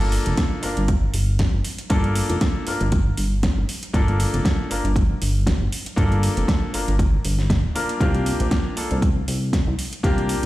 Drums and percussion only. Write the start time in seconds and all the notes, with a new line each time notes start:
0.01 closed hi-hat
0.12 open hi-hat
0.26 closed hi-hat
0.37 kick, snare, closed hi-hat
0.63 open hi-hat
0.77 closed hi-hat
0.88 kick, closed hi-hat
1.14 open hi-hat
1.39 kick, snare, closed hi-hat
1.65 open hi-hat
1.78 closed hi-hat
1.90 kick, closed hi-hat
2.04 closed hi-hat
2.15 open hi-hat
2.30 closed hi-hat
2.41 kick, snare, closed hi-hat
2.67 open hi-hat
2.81 closed hi-hat
2.92 kick, closed hi-hat
3.17 open hi-hat
3.43 kick, snare, closed hi-hat
3.69 open hi-hat
3.83 closed hi-hat
3.94 kick, closed hi-hat
4.08 closed hi-hat
4.20 open hi-hat
4.34 closed hi-hat
4.45 kick, snare, closed hi-hat
4.71 open hi-hat
4.85 closed hi-hat
4.96 kick, closed hi-hat
5.22 open hi-hat
5.47 kick, snare, closed hi-hat
5.72 open hi-hat
5.86 closed hi-hat
5.97 kick, closed hi-hat
6.12 closed hi-hat
6.23 open hi-hat
6.37 closed hi-hat
6.48 kick, snare, closed hi-hat
6.74 open hi-hat
6.88 closed hi-hat
6.99 kick, closed hi-hat
7.25 open hi-hat
7.39 snare
7.50 kick, snare, closed hi-hat
7.76 open hi-hat
7.89 closed hi-hat
8.01 kick, closed hi-hat
8.14 closed hi-hat
8.26 open hi-hat
8.40 closed hi-hat
8.51 kick, snare, closed hi-hat
8.77 open hi-hat
8.91 closed hi-hat
9.02 kick, closed hi-hat
9.28 open hi-hat
9.53 kick, snare, closed hi-hat
9.79 open hi-hat
9.93 closed hi-hat
10.04 kick, closed hi-hat
10.18 closed hi-hat
10.29 open hi-hat